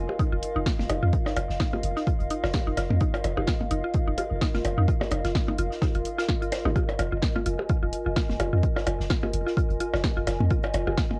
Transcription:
Already playing: F4 A#4 D#5 F5
0.09 percussion blips
0.19 D#4, kick, closed hi-hat
0.32 D#1 F4
0.43 closed hi-hat
0.56 F1 D#4
0.66 F4, kick, snare, closed hi-hat
0.79 D#1, snare, percussion blips
0.90 F1 D#4, closed hi-hat, percussion blips
1.03 F2 F4
1.13 kick, closed hi-hat
1.26 D#4, snare, percussion blips
1.37 F1 F4, closed hi-hat, percussion blips
1.50 F1, snare
1.60 D#4, kick, snare, closed hi-hat
1.73 F4, percussion blips
1.83 F1, closed hi-hat
1.96 D#4, snare
2.07 F4, kick, closed hi-hat
2.20 D#1, closed hi-hat
2.30 D#4, closed hi-hat
2.44 F1 F4, snare, percussion blips
2.53 kick, snare, closed hi-hat, percussion blips
2.67 D#1 D#4
2.77 F1 F4, snare, closed hi-hat, percussion blips
2.90 F2, percussion blips
3.00 D#4, kick, closed hi-hat
3.14 F4, closed hi-hat, percussion blips
3.24 F1, closed hi-hat, percussion blips
3.37 F1 D#4, percussion blips
3.47 F4, kick, snare, closed hi-hat
3.61 percussion blips
3.71 F1 D#4, closed hi-hat
3.84 F4
3.94 kick, closed hi-hat
4.08 D#1 D#4
4.18 F4, closed hi-hat, percussion blips
4.31 F1
4.41 D#4, kick, snare, closed hi-hat
4.54 D#1 F4, snare, percussion blips
4.65 F1, closed hi-hat, percussion blips
4.78 F2 D#4
4.88 F4, kick, closed hi-hat
5.01 snare, percussion blips
5.11 F1 D#4, closed hi-hat, percussion blips
5.25 F1 F4, snare, closed hi-hat
5.35 kick, snare, closed hi-hat
5.48 D#4, percussion blips
5.58 F1 F4, closed hi-hat
5.71 snare
5.82 D#4, kick, snare, closed hi-hat, percussion blips
5.95 D#1 F4, closed hi-hat
6.05 closed hi-hat
6.18 F4, snare, closed hi-hat
6.29 F4, kick, snare
6.42 F4, closed hi-hat
6.52 C5, snare, closed hi-hat, percussion blips
6.65 G#1 D#4, percussion blips
6.76 F4, kick, closed hi-hat, percussion blips
6.89 closed hi-hat, percussion blips
6.99 F1 F4, closed hi-hat, percussion blips
7.12 F1 F4
7.22 kick, snare, closed hi-hat
7.28 G#5
7.36 F4, percussion blips
7.46 F1 F4, closed hi-hat
7.59 percussion blips
7.69 F4, kick, closed hi-hat
7.83 D#1 F4
7.93 closed hi-hat
8.06 F1 F4
8.16 F4, kick, snare, closed hi-hat
8.29 D#1, snare, percussion blips
8.40 F1 F4, closed hi-hat, percussion blips
8.53 F2 F4
8.63 kick, closed hi-hat
8.76 F4, snare, percussion blips
8.87 F1 F4, closed hi-hat, percussion blips
9.00 F1, snare
9.10 F4, kick, snare, closed hi-hat
9.23 F4, percussion blips
9.33 F1, closed hi-hat
9.47 F4, snare
9.57 F4, kick, closed hi-hat
9.70 D#1, closed hi-hat
9.80 F4, closed hi-hat
9.94 F1 F4, snare, percussion blips
10.04 kick, snare, closed hi-hat, percussion blips
10.17 D#1 F4
10.27 F1 F4, snare, closed hi-hat, percussion blips
10.40 F2, percussion blips
10.50 F4, kick, closed hi-hat
10.63 F4, closed hi-hat, percussion blips
10.73 F1, closed hi-hat, percussion blips
10.87 F1 F4, percussion blips
10.98 F4, kick, snare, closed hi-hat
11.11 percussion blips

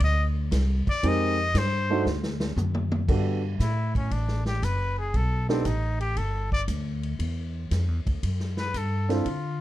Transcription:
0.00 D2 D#5, kick, ride
0.51 C2, kick, snare, hi-hat pedal, ride
0.87 D5, muted upright bass stroke, kick, ride
1.03 F2 G#3 C4 D#4 G4 A#4, kick, ride
1.08 D#5
1.54 G2 C5, kick, snare, hi-hat pedal, ride
1.90 A3 D4 D#4 F#4 C5
2.05 D2, snare
2.23 snare
2.40 snare
2.56 F#2, hi-hat pedal, mid tom
2.75 mid tom
2.92 mid tom
3.08 G2 B3 D4 F#4 G4 A4, kick, crash
3.60 A2 E4, kick, snare, hi-hat pedal, ride
3.95 C#4, kick, ride
4.11 A1 D4, kick, ride
4.28 snare
4.46 G4, snare
4.62 F#1 B4, kick, hi-hat pedal, ride
4.99 G#4
5.14 B1 A4, kick, ride
5.49 B3 C4 D4 D#4 G4 A4, snare
5.65 A1 D#4, kick, hi-hat pedal, ride
6.00 G4, ride
6.16 G1 A4, kick, ride
6.52 D5, kick
6.68 D2, kick, hi-hat pedal, ride
7.03 ride
7.19 E2, kick, ride
7.71 F2, kick, snare, hi-hat pedal, ride
7.88 E2
8.05 D2, kick, ride
8.23 F#2, kick, ride
8.40 snare
8.57 B4, snare
8.74 G2 A4, kick, hi-hat pedal, ride
9.09 C4 D4 E4 F4 A4, snare, ride
9.25 D3, kick, ride

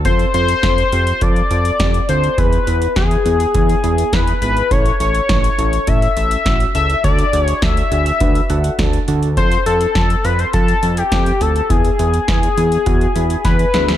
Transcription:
0.05 F2 C4 F4 A4 C5, kick, closed hi-hat
0.19 closed hi-hat
0.34 F2 C4 F4 A4 C5, closed hi-hat
0.48 closed hi-hat
0.63 F2 C4 F4 A4, kick, snare, closed hi-hat
0.78 closed hi-hat
0.92 F2 C4 F4 G4, closed hi-hat
1.07 closed hi-hat
1.21 F2 C4 F4 A4 D5, kick, closed hi-hat
1.36 closed hi-hat
1.51 F2 C4 F4 A4, closed hi-hat
1.65 closed hi-hat
1.80 F2 C4 F4 G4, kick, snare, closed hi-hat
1.94 closed hi-hat
2.09 D2 C4 F4 A4 C5, closed hi-hat
2.24 closed hi-hat
2.38 E2 B3 E4 G#4 B4, kick, closed hi-hat
2.53 closed hi-hat
2.67 E2 B3 E4 B4, closed hi-hat
2.82 closed hi-hat
2.96 E2 B3 E4 G#4, kick, snare, closed hi-hat
3.11 closed hi-hat
3.25 E2 B3 E4 G#4, closed hi-hat
3.40 closed hi-hat
3.54 E2 B3 E4 G#4, kick, closed hi-hat
3.69 closed hi-hat
3.84 E2 B3 E4 G#4, closed hi-hat
3.98 closed hi-hat
4.13 E2 B3 E4 G#4 B4, kick, snare, closed hi-hat
4.27 closed hi-hat
4.42 G#1 B3 E4 G#4 B4, closed hi-hat
4.57 closed hi-hat
4.71 A1 C#4 E4 A4 C#5, kick, closed hi-hat
4.86 closed hi-hat
5.00 A1 C#4 E4 A4 C#5, closed hi-hat
5.15 closed hi-hat
5.29 A1 C#4 E4 A4, kick, snare, closed hi-hat
5.44 closed hi-hat
5.58 A1 C#4 E4 A4, closed hi-hat
5.73 closed hi-hat
5.87 A1 C#4 E4 A4 E5, kick, closed hi-hat
6.02 closed hi-hat
6.16 A1 C#4 E4 A4, closed hi-hat
6.31 closed hi-hat
6.46 A1 C#4 E4 F#4, kick, snare, closed hi-hat
6.60 closed hi-hat
6.75 C#2 C#4 E4 A4 E5, closed hi-hat
6.90 closed hi-hat
7.04 D2 D4 F#4 A4 D5, kick, closed hi-hat
7.19 closed hi-hat
7.33 D2 D4 F#4 G#4, closed hi-hat
7.43 C#5
7.48 closed hi-hat
7.62 D2 D4 F#4 A4 E5, kick, snare, closed hi-hat
7.77 closed hi-hat
7.91 D2 D4 F#4 G#4, closed hi-hat
8.06 closed hi-hat
8.20 D2 D4 F#4 B4, kick, closed hi-hat
8.35 closed hi-hat
8.50 D2 D4 F#4 A4 F#5, closed hi-hat
8.64 closed hi-hat
8.79 D2 D4 F#4 A4 A5, kick, snare, closed hi-hat
8.93 closed hi-hat
9.08 D2 D4 F#4 A4 A5, closed hi-hat
9.23 closed hi-hat
9.37 F2 C4 F4 A4 C5, kick, closed hi-hat
9.52 closed hi-hat
9.66 F2 C4 F4 A4, closed hi-hat
9.81 closed hi-hat
9.95 F2 C4 F4 A4, kick, snare, closed hi-hat
10.10 closed hi-hat
10.24 F2 C4 F4 B4, closed hi-hat
10.39 C5, closed hi-hat
10.53 F2 C4 F4 A4, kick, closed hi-hat
10.68 closed hi-hat
10.83 F2 C4 F4 A4, closed hi-hat
10.97 G4, closed hi-hat
11.12 F2 C4 F4 A4, kick, snare, closed hi-hat
11.26 closed hi-hat
11.41 D2 C4 F4 A4, closed hi-hat
11.56 closed hi-hat
11.70 E2 B3 E4 G#4, kick, closed hi-hat
11.85 closed hi-hat
11.99 E2 B3 E4 G#4, closed hi-hat
12.14 closed hi-hat
12.28 E2 B3 E4 G#4, kick, snare, closed hi-hat
12.43 closed hi-hat
12.57 E2 B3 E4 G#4, closed hi-hat
12.72 closed hi-hat
12.86 E2 B3 E4 F#4, kick, closed hi-hat
13.01 closed hi-hat
13.16 E2 B3 E4 G#4 B5, closed hi-hat
13.30 closed hi-hat
13.45 E2 B3 E4 G#4 B4 G#5, kick, snare, closed hi-hat
13.59 closed hi-hat
13.74 D2 B3 E4 G#4 E5, snare, closed hi-hat
13.88 snare, closed hi-hat

